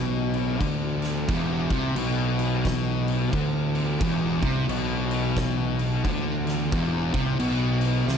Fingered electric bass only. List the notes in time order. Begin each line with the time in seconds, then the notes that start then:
Already playing: B1
0.60 D2
1.28 E1
1.70 C2
1.95 B1
3.33 D2
4.01 E1
4.42 C2
4.68 B1
6.04 D2
6.72 E1
7.14 C2
7.38 B1
8.07 C2